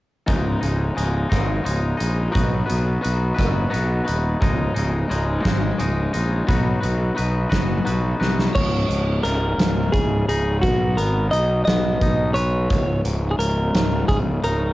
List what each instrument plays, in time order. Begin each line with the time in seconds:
0.27 fingered electric bass C#1, clean electric guitar C#2 G#2 C#3 G#3 D#4, kick, closed hi-hat
0.61 fingered electric bass C#1, clean electric guitar C#3 G#3 D#4, closed hi-hat
0.95 fingered electric bass C#1, clean electric guitar G#2 C#3 G#3 D#4, closed hi-hat
1.29 fingered electric bass G#1, clean electric guitar C#3 G#3 D#4, kick, cross-stick, closed hi-hat
1.63 fingered electric bass C#1, clean electric guitar G#2 C#3 G#3 D#4, closed hi-hat
1.97 fingered electric bass A#1, clean electric guitar C#3 G#3 D#4, closed hi-hat
2.32 fingered electric bass B1, clean electric guitar B2 F#3 B3 D#4 F#4 B4, kick, closed hi-hat
2.66 clean electric guitar B3 D#4 F#4 B4, closed hi-hat
2.71 fingered electric bass B1
3.01 clean electric guitar B3 D#4 F#4 B4, closed hi-hat
3.05 fingered electric bass B1
3.35 clean electric guitar B3 D#4 F#4 B4
3.39 fingered electric bass F#1, kick, cross-stick, closed hi-hat
3.70 clean electric guitar B3 D#4 F#4 B4, closed hi-hat
3.75 fingered electric bass B1
4.05 clean electric guitar B3 D#4 F#4 B4, closed hi-hat
4.09 fingered electric bass D#1
4.40 fingered electric bass C#1, clean electric guitar C#2 G#2 C#3 G#3 D#4, kick, closed hi-hat
4.74 fingered electric bass C#1, clean electric guitar C#3 G#3 D#4, closed hi-hat
5.08 fingered electric bass C#1, clean electric guitar G#2 C#3 G#3 D#4, closed hi-hat
5.42 fingered electric bass G#1, clean electric guitar C#3 G#3 D#4, kick, snare, closed hi-hat
5.78 fingered electric bass C#1, clean electric guitar G#2 C#3 G#3 D#4, closed hi-hat
6.13 fingered electric bass A#1, clean electric guitar C#3 G#3 D#4, closed hi-hat
6.47 fingered electric bass B1, clean electric guitar B2 F#3 B3 D#4 F#4 B4, kick, closed hi-hat
6.80 fingered electric bass B1, clean electric guitar B3 D#4 F#4 B4, closed hi-hat
7.15 fingered electric bass B1, clean electric guitar B3 D#4 F#4 B4, closed hi-hat
7.49 fingered electric bass F#1, clean electric guitar B3 D#4 F#4 B4, kick, snare, closed hi-hat
7.85 fingered electric bass B1, clean electric guitar B3 D#4 F#4 B4, closed hi-hat
8.20 fingered electric bass C2, clean electric guitar B3 D#4 F#4 B4, snare
8.39 snare
8.55 fingered electric bass C#1, clean electric guitar C#2 C#5, kick, crash
8.88 fingered electric bass C#1, clean electric guitar G#2, closed hi-hat
9.23 fingered electric bass C#1, clean electric guitar C#3 A#4, closed hi-hat
9.58 fingered electric bass C#1, clean electric guitar G#2, snare, closed hi-hat
9.92 fingered electric bass C#1, clean electric guitar C#3 G#4, kick, closed hi-hat
10.29 fingered electric bass C#1, clean electric guitar D#4 G#4, closed hi-hat
10.61 fingered electric bass B1, clean electric guitar B2 F#4, kick, closed hi-hat
10.97 fingered electric bass G#1, clean electric guitar B3 A#4, closed hi-hat
11.31 fingered electric bass B1, clean electric guitar D#4 D#5, closed hi-hat
11.65 fingered electric bass B1, clean electric guitar B3 D#5, snare, closed hi-hat
12.01 fingered electric bass B1, clean electric guitar D#4, kick, closed hi-hat
12.34 clean electric guitar B4 C#5, closed hi-hat
12.70 fingered electric bass C#1, clean electric guitar C#2, kick, closed hi-hat
13.05 fingered electric bass C#1, clean electric guitar G#2, closed hi-hat
13.31 clean electric guitar G#4
13.39 fingered electric bass C#1, clean electric guitar C#3 A#4, closed hi-hat
13.74 fingered electric bass C#1, clean electric guitar G#2, snare, closed hi-hat
14.08 fingered electric bass C#1, clean electric guitar C#3 G#4, kick, closed hi-hat
14.43 fingered electric bass C#1, clean electric guitar D#4 A#4, closed hi-hat